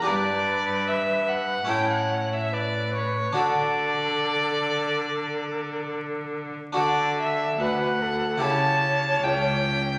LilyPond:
<<
  \new Staff \with { instrumentName = "Violin" } { \time 4/4 \key d \major \tempo 4 = 72 d''4 e''8 fis''8 g''16 fis''8 e''16 d''8 cis''8 | d''2. r4 | d''8 e''8 fis''4 a''4 g''4 | }
  \new Staff \with { instrumentName = "Flute" } { \time 4/4 \key d \major b'2 cis''4 b'4 | a'2.~ a'8 r8 | a'4 b'8 a'8 cis''2 | }
  \new Staff \with { instrumentName = "Harpsichord" } { \time 4/4 \key d \major <d' g' b'>2 <cis' e' a'>2 | <d' fis' a'>1 | <d' fis' a'>2 <e' g' a'>2 | }
  \new Staff \with { instrumentName = "Harpsichord" } { \clef bass \time 4/4 \key d \major g,2 a,2 | d2.~ d8. r16 | d4 d,4 cis4 cis,4 | }
  \new Staff \with { instrumentName = "Cello" } { \clef bass \time 4/4 \key d \major g,2 a,2 | d2.~ d8. r16 | d4 d,4 cis4 cis,4 | }
>>